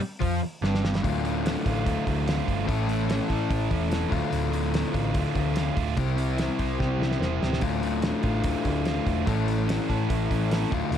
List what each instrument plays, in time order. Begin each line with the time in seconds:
0.00 muted picked electric bass stroke, muted overdriven electric guitar stroke, muted distorted electric guitar stroke
0.20 picked electric bass F2, overdriven electric guitar F3, distorted electric guitar F3, kick, open hi-hat
0.42 muted picked electric bass stroke, muted distorted electric guitar stroke, muted overdriven electric guitar stroke
0.62 picked electric bass G1, distorted electric guitar G2, overdriven electric guitar G2, snare
0.75 snare
0.85 snare
0.95 snare
1.02 picked electric bass D1, overdriven electric guitar D2 A2 D3 A3 F4, distorted electric guitar D2, kick, open hi-hat
1.25 distorted electric guitar A2, open hi-hat
1.45 distorted electric guitar D3, snare, open hi-hat
1.66 picked electric bass A1, distorted electric guitar F4, kick, open hi-hat
1.85 picked electric bass D1, distorted electric guitar A3, kick, open hi-hat
2.05 picked electric bass D2, distorted electric guitar D3, kick, open hi-hat
2.26 distorted electric guitar F4, snare, open hi-hat
2.46 picked electric bass G1, distorted electric guitar A3, kick, open hi-hat
2.65 picked electric bass A1, overdriven electric guitar A2 E3 A3 C#4 E4 A4, distorted electric guitar A2, kick, open hi-hat
2.88 distorted electric guitar A3, open hi-hat
3.07 distorted electric guitar C#4, snare, open hi-hat
3.28 picked electric bass A2, distorted electric guitar A4, kick, open hi-hat
3.50 picked electric bass A1, distorted electric guitar E4, kick, open hi-hat
3.71 picked electric bass E1, distorted electric guitar C#4, kick, open hi-hat
3.90 distorted electric guitar A4, snare, open hi-hat
4.09 picked electric bass D1, overdriven electric guitar D2 A2 D3 A3 F4, distorted electric guitar D2, kick, open hi-hat
4.30 picked electric bass D1, distorted electric guitar D2, open hi-hat
4.51 distorted electric guitar A2, open hi-hat
4.72 distorted electric guitar D3, snare, open hi-hat
4.92 picked electric bass A1, distorted electric guitar F4, kick, open hi-hat
5.13 picked electric bass D1, distorted electric guitar A3, kick, open hi-hat
5.33 picked electric bass D2, distorted electric guitar D3, kick, open hi-hat
5.55 distorted electric guitar F4, snare, open hi-hat
5.76 picked electric bass D1, distorted electric guitar A3, kick, open hi-hat
5.95 picked electric bass C2, distorted electric guitar C3, overdriven electric guitar C3 G3 C4 E4 G4, kick, open hi-hat
6.00 overdriven electric guitar C5
6.16 distorted electric guitar C4, open hi-hat
6.37 distorted electric guitar E4, snare, open hi-hat
6.59 picked electric bass C2, distorted electric guitar C5, kick, open hi-hat
6.79 picked electric bass C2, distorted electric guitar G4, kick, snare
6.99 picked electric bass C2, distorted electric guitar E4, snare
7.11 snare
7.20 picked electric bass E1, distorted electric guitar C5, snare
7.41 picked electric bass D1, distorted electric guitar G4, snare
7.53 snare
7.60 picked electric bass D1, overdriven electric guitar D2 A2 D3 A3 F4, distorted electric guitar D2, kick, open hi-hat
7.82 distorted electric guitar A2, open hi-hat
8.02 distorted electric guitar D3, snare, open hi-hat
8.23 picked electric bass A1, distorted electric guitar F4, kick, open hi-hat
8.44 picked electric bass D1, distorted electric guitar A3, kick, open hi-hat
8.64 picked electric bass D2, distorted electric guitar D3, kick, open hi-hat
8.85 distorted electric guitar F4, snare, open hi-hat
9.06 picked electric bass E1, distorted electric guitar A3, kick, open hi-hat
9.26 picked electric bass A1, overdriven electric guitar A2 E3 A3 C#4 E4 A4, distorted electric guitar A2, kick, open hi-hat
9.47 distorted electric guitar A3, open hi-hat
9.67 distorted electric guitar C#4, snare, open hi-hat
9.89 picked electric bass A2, distorted electric guitar A4, kick, open hi-hat
10.09 picked electric bass A1, distorted electric guitar E4, kick, open hi-hat
10.30 picked electric bass A1, distorted electric guitar C#4, kick, open hi-hat
10.51 distorted electric guitar A4, snare, open hi-hat
10.71 picked electric bass D1, overdriven electric guitar D2 A2 D3 A3 F4, distorted electric guitar D2, kick, open hi-hat
10.91 picked electric bass D1, distorted electric guitar D2, open hi-hat